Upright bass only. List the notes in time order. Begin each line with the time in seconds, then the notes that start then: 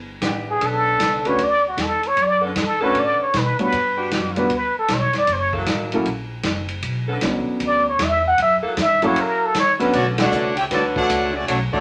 Already playing: G1
0.21 A1
0.61 B1
0.99 C#2
1.38 D2
1.77 E2
2.16 F#2
2.56 G2
2.94 A2
3.19 muted upright bass stroke
3.34 B2
3.59 muted upright bass stroke
3.73 G2
4.11 F#2
4.50 D2
4.75 muted upright bass stroke
4.89 B1
5.02 G1
5.14 F#1
5.27 F#1
5.66 A1
6.05 A#1
6.44 F#1
6.82 B1
7.21 C#2
7.47 muted upright bass stroke
7.60 D2
7.99 E2
8.38 F#2
8.62 muted upright bass stroke
8.77 G2
9.93 B1
10.31 C#2
10.71 D2
11.09 C#2
11.48 B1